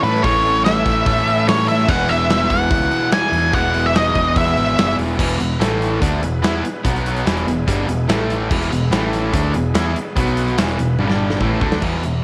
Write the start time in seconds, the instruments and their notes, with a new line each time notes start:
Already playing: distorted electric guitar A2 E3 A3, overdriven electric guitar E3, tonewheel organ C#4 E4 A4 C#5
0.02 picked electric bass A2, overdriven electric guitar A3 C#4 E4, lead electric guitar B4, open hi-hat
0.15 snare
0.23 picked electric bass A1, overdriven electric guitar A2 E3 A3 C#4 E4, lead electric guitar C#5, kick, open hi-hat
0.44 overdriven electric guitar A3 C#4 E4, open hi-hat
0.64 overdriven electric guitar A2 E3 A3 C#4 E4, lead electric guitar E5, snare, open hi-hat
0.85 picked electric bass A1, overdriven electric guitar A3 C#4 E4, kick, open hi-hat
1.05 picked electric bass A2, overdriven electric guitar E3 A3 C#4 E4, kick, open hi-hat
1.26 overdriven electric guitar A2 E3 A3 C#4 E4, open hi-hat
1.46 overdriven electric guitar E3 A3 C#4 E4, lead electric guitar C#5, snare, open hi-hat
1.59 snare
1.68 overdriven electric guitar A3 C#4 E4, lead electric guitar E5, open hi-hat
1.79 snare
1.87 picked electric bass E1, distorted electric guitar E2 B2, overdriven electric guitar E3 G#3 B3 E4, tonewheel organ B3 E4 G#4 B4, lead electric guitar F#5, kick, crash
2.08 picked electric bass E1, overdriven electric guitar G#3 B3 E4, lead electric guitar E5, open hi-hat
2.29 overdriven electric guitar E3 G#3 B3 E4, snare, open hi-hat
2.48 picked electric bass E1, overdriven electric guitar G#3 B3 E4, lead electric guitar F#5, kick, open hi-hat
2.69 picked electric bass C#2, overdriven electric guitar E3 G#3 B3 E4, kick, open hi-hat
2.91 overdriven electric guitar E3 G#3 B3 E4, open hi-hat
3.11 overdriven electric guitar E3 G#3 B3 E4, lead electric guitar G#5, snare, open hi-hat
3.32 picked electric bass E2, overdriven electric guitar G#3 B3 E4, open hi-hat
3.52 picked electric bass E1, distorted electric guitar E2 B2, overdriven electric guitar E3 G#3 B3 E4, lead electric guitar F#5, kick, open hi-hat
3.73 overdriven electric guitar G#3 B3 E4, open hi-hat
3.86 lead electric guitar E5
3.93 overdriven electric guitar E3 G#3 B3 E4, lead electric guitar D#5, snare, open hi-hat
4.15 picked electric bass E1, overdriven electric guitar G#3 B3 E4, kick, open hi-hat
4.36 picked electric bass E2, overdriven electric guitar E3 G#3 B3 E4, lead electric guitar E5, kick, open hi-hat
4.56 picked electric bass G#1, overdriven electric guitar E3 G#3 B3 E4, open hi-hat
4.77 picked electric bass F#1, overdriven electric guitar E3 G#3 B3 E4, snare, open hi-hat
4.97 picked electric bass E1, overdriven electric guitar G#3 B3 E4, open hi-hat
5.18 picked electric bass E1, overdriven electric guitar E2 B2 E3, tonewheel organ B3 E4 G#4 B4, kick, crash
5.29 closed hi-hat
5.39 picked electric bass E1, overdriven electric guitar E2 B2, closed hi-hat
5.59 picked electric bass A1, overdriven electric guitar A2 E3 A3, tonewheel organ A3 E4 A4 E5, snare, closed hi-hat
5.82 closed hi-hat
6.01 picked electric bass D2, overdriven electric guitar D3 A3 D4, tonewheel organ B3 E4 G#4 B4, kick, closed hi-hat
6.21 picked electric bass E1, overdriven electric guitar E2 B2, closed hi-hat
6.42 picked electric bass E2, overdriven electric guitar E3 B3 E4, snare, closed hi-hat
6.65 closed hi-hat
6.84 picked electric bass B1, overdriven electric guitar B2 F#3 B3, tonewheel organ F#3 B3 F#4 B4, kick, closed hi-hat
6.96 closed hi-hat
7.06 closed hi-hat
7.16 closed hi-hat
7.25 picked electric bass E1, overdriven electric guitar E2 B2 E3, tonewheel organ G#3 B3 E4 G#4, snare, closed hi-hat
7.37 closed hi-hat
7.46 picked electric bass E1, overdriven electric guitar E2 B2, closed hi-hat
7.67 picked electric bass G1, overdriven electric guitar G2 D3 G3, kick, closed hi-hat
7.87 picked electric bass E1, overdriven electric guitar E2 B2, closed hi-hat
8.08 picked electric bass A1, overdriven electric guitar A2 E3 A3, tonewheel organ E3 A3 E4 A4, snare, closed hi-hat
8.30 closed hi-hat
8.49 picked electric bass E1, overdriven electric guitar E2 B2 E3, tonewheel organ G#3 B3 E4 G#4, kick, crash
8.62 closed hi-hat
8.71 picked electric bass E1, overdriven electric guitar E2 B2, closed hi-hat
8.91 picked electric bass A1, overdriven electric guitar A2 E3 A3, tonewheel organ E3 A3 E4 A4, snare, closed hi-hat
9.13 closed hi-hat
9.33 picked electric bass D2, overdriven electric guitar D3 A3 D4, tonewheel organ G#3 B3 E4 G#4, kick, closed hi-hat
9.54 picked electric bass E1, overdriven electric guitar E2 B2, closed hi-hat
9.75 picked electric bass E2, overdriven electric guitar E3 B3 E4, snare, closed hi-hat
9.96 closed hi-hat
10.16 picked electric bass B1, overdriven electric guitar B2 F#3 B3, tonewheel organ F#3 B3 F#4 B4, kick, closed hi-hat
10.27 closed hi-hat
10.37 closed hi-hat
10.48 closed hi-hat
10.58 picked electric bass E1, overdriven electric guitar E2 B2 E3, tonewheel organ B3 E4 G#4 B4, snare, closed hi-hat
10.68 closed hi-hat
10.79 picked electric bass E1, overdriven electric guitar E2 B2, closed hi-hat
10.99 picked electric bass G1, overdriven electric guitar G2 D3 G3, tonewheel organ G3 D4 G4 D5, high tom
11.10 snare
11.30 snare
11.40 picked electric bass A1, overdriven electric guitar A2 E3 A3, tonewheel organ B3 E4 G#4 B4, kick
11.61 picked electric bass D2, overdriven electric guitar D3 A3 D4, kick
11.72 snare
11.82 picked electric bass E2, overdriven electric guitar E2 B2 E3, kick, crash
12.03 overdriven electric guitar E2 B2, closed hi-hat